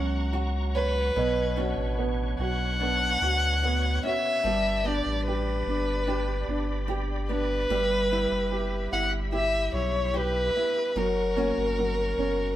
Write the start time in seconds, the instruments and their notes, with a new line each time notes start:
Already playing: sub bass C#2, nylon-string guitar F#2 F#3 F#4, upright piano F#3 C#4, violin F#5, tonewheel organ F#5 A#5 C#6
0.33 nylon-string guitar F#4, upright piano F#4
0.75 violin B4, upright piano C#5
1.16 sub bass B1, nylon-string guitar B2, upright piano B3, tonewheel organ B4 C#5
1.56 nylon-string guitar C#4 D4 F#4, upright piano F#4
1.77 sub bass A1
1.98 upright piano B3
2.39 sub bass B1, upright piano F#4, violin F#5
2.80 upright piano B3, nylon-string guitar D4
3.21 sub bass D2, upright piano F#4
3.63 upright piano B3, nylon-string guitar F#4
4.03 nylon-string guitar C#4, upright piano F#4, violin E5
4.42 sub bass G1, nylon-string guitar G2, tonewheel organ G4 D5 B5
4.46 upright piano G3
4.84 nylon-string guitar B3 D4 G4, upright piano D4, violin D5
5.06 sub bass A1
5.28 upright piano G4, violin B4
5.67 sub bass G1, upright piano D4
6.07 nylon-string guitar D4, upright piano G4
6.48 sub bass G1, upright piano D4
6.88 nylon-string guitar G4, upright piano G4
7.29 nylon-string guitar B3, upright piano D4, violin B4
7.70 sub bass G1, upright piano G3, nylon-string guitar G3, tonewheel organ E5
8.11 nylon-string guitar B3 E4 G4, upright piano E4
8.31 sub bass F#1
8.51 upright piano G4
8.92 sub bass G1, upright piano E4, violin F#5
9.32 nylon-string guitar E4, upright piano G4, violin E5
9.73 sub bass B1, upright piano E4, violin C#5
10.14 nylon-string guitar G4, upright piano G4, violin B4
10.56 nylon-string guitar B3, upright piano E4
10.96 sub bass F#1, nylon-string guitar F#2, upright piano F#3, tonewheel organ A#4 F#5 C#6, violin A#4
11.36 nylon-string guitar A#3 C#4 F#4, upright piano C#4
11.58 sub bass G1
11.79 upright piano F#3
12.18 sub bass F#1, upright piano C#4